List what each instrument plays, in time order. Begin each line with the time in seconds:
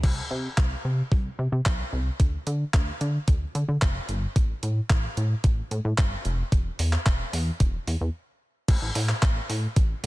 0.04 analog synth bass C2, kick, crash
0.31 analog synth bass C3
0.58 analog synth bass C2, kick, clap
0.85 analog synth bass C3
1.12 analog synth bass C2, kick
1.39 analog synth bass C3
1.52 analog synth bass C3
1.66 analog synth bass B1, kick, clap
1.93 analog synth bass C2
2.20 analog synth bass D2, kick, closed hi-hat
2.47 analog synth bass D3, closed hi-hat
2.74 analog synth bass D2, kick, clap, closed hi-hat
3.01 analog synth bass D3, closed hi-hat
3.28 analog synth bass D2, kick, closed hi-hat
3.55 analog synth bass D3, closed hi-hat
3.68 analog synth bass D3
3.82 analog synth bass F1, kick, clap, closed hi-hat
4.09 analog synth bass G1, closed hi-hat
4.36 analog synth bass A1, kick, closed hi-hat
4.63 analog synth bass A2, closed hi-hat
4.90 analog synth bass A1, kick, clap, closed hi-hat
5.17 analog synth bass A2, closed hi-hat
5.44 analog synth bass A1, kick, closed hi-hat
5.71 analog synth bass A2, closed hi-hat
5.85 analog synth bass A2
5.98 analog synth bass G1, kick, clap, closed hi-hat
6.25 analog synth bass F1, closed hi-hat
6.52 analog synth bass E1, kick, closed hi-hat
6.79 analog synth bass E2, open hi-hat
6.93 clap
7.06 analog synth bass E1, kick, clap, closed hi-hat
7.33 analog synth bass E2, open hi-hat
7.60 analog synth bass E1, kick, closed hi-hat
7.87 analog synth bass E2, open hi-hat
8.01 analog synth bass E2
8.68 analog synth bass A1, kick, closed hi-hat, crash
8.82 analog synth bass A1
8.95 analog synth bass A2, open hi-hat
9.09 clap
9.22 analog synth bass A1, kick, clap, closed hi-hat
9.50 analog synth bass A2, open hi-hat
9.76 analog synth bass A1, kick, closed hi-hat